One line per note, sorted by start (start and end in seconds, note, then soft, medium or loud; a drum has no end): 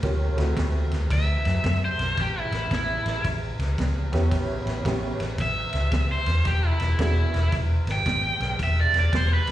0.02 0.28 D2 medium
0.02 0.34 A#3 medium
0.02 0.34 C#4 soft
0.02 0.35 F4 soft
0.02 0.35 G4 medium
0.02 kick medium
0.02 snare soft
0.02 ride medium
0.36 0.52 D2 medium
0.36 0.84 A3 soft
0.36 0.84 C4 soft
0.36 0.85 E4 soft
0.36 0.85 F#4 medium
0.36 snare soft
0.36 ride medium
0.57 0.81 D2 medium
0.57 kick medium
0.57 snare loud
0.57 ride medium
0.91 1.05 D2 medium
0.91 snare soft
0.91 ride medium
1.10 1.35 D2 medium
1.10 1.81 E5 medium
1.10 kick medium
1.10 snare soft
1.10 ride medium
1.45 1.59 F#2 medium
1.45 snare soft
1.45 ride medium
1.64 1.89 F#2 medium
1.64 kick medium
1.64 snare loud
1.64 ride medium
1.85 2.18 C5 medium
1.98 2.12 B1 medium
1.98 snare soft
1.98 ride medium
2.17 2.42 A1 medium
2.17 2.40 G4 medium
2.17 kick medium
2.17 snare soft
2.17 ride medium
2.40 2.72 E4 medium
2.51 2.65 A1 medium
2.51 snare soft
2.51 ride soft
2.71 2.95 A1 medium
2.71 3.25 E4 medium
2.71 kick medium
2.71 snare medium
2.71 ride medium
3.06 3.19 A1 medium
3.06 snare soft
3.06 ride medium
3.25 3.49 A1 medium
3.25 kick medium
3.25 snare soft
3.25 ride medium
3.59 3.73 C#2 medium
3.59 snare soft
3.59 ride medium
3.78 4.03 C#2 medium
3.78 kick medium
3.78 snare loud
3.78 ride medium
4.12 4.26 E2 medium
4.12 4.81 B3 medium
4.12 4.82 C#4 medium
4.12 4.82 E4 medium
4.12 4.82 G4 medium
4.12 snare soft
4.12 ride medium
4.31 4.56 A1 medium
4.31 kick medium
4.31 snare soft
4.31 ride medium
4.66 4.79 A1 medium
4.66 snare soft
4.66 ride medium
4.85 5.10 A1 medium
4.85 5.16 B3 medium
4.85 5.16 C#4 soft
4.85 5.16 E4 soft
4.85 5.16 G4 medium
4.85 kick medium
4.85 snare loud
4.85 ride medium
5.20 5.34 A1 medium
5.20 snare soft
5.20 ride medium
5.38 5.63 A1 medium
5.38 6.09 E5 medium
5.38 kick medium
5.38 snare soft
5.38 ride medium
5.73 5.87 C#2 medium
5.73 snare soft
5.73 ride medium
5.92 6.16 C#2 medium
5.92 kick medium
5.92 snare loud
5.92 ride medium
6.12 6.46 C5 medium
6.26 6.40 E2 medium
6.26 snare soft
6.26 ride medium
6.45 6.70 E1 medium
6.45 6.66 G4 medium
6.45 kick medium
6.45 snare soft
6.45 ride medium
6.66 7.00 E4 medium
6.79 6.94 E1 medium
6.79 snare soft
6.79 ride medium
6.99 7.23 E1 medium
6.99 7.30 B3 medium
6.99 7.30 D4 soft
6.99 7.53 E4 medium
6.99 7.30 F#4 soft
6.99 7.31 G#4 medium
6.99 kick medium
6.99 snare loud
6.99 ride medium
7.34 7.47 E1 medium
7.34 snare soft
7.34 ride soft
7.52 7.77 E1 medium
7.52 kick medium
7.52 snare soft
7.52 ride medium
7.87 8.00 G#1 medium
7.87 snare soft
7.87 ride medium
7.92 8.59 G5 loud
8.06 8.30 G#1 medium
8.06 kick medium
8.06 snare loud
8.06 ride medium
8.40 8.54 B1 medium
8.40 snare soft
8.40 ride medium
8.59 8.84 E1 medium
8.59 kick medium
8.59 snare soft
8.59 ride medium
8.63 8.79 E5 medium
8.81 8.96 D5 medium
8.93 9.07 E1 medium
8.93 snare soft
8.93 ride medium
9.00 9.15 D5 medium
9.13 9.37 E1 medium
9.13 kick medium
9.13 snare medium
9.13 ride medium
9.17 9.32 C5 medium
9.34 9.52 B4 medium
9.47 9.52 E1 medium
9.47 snare soft
9.47 ride medium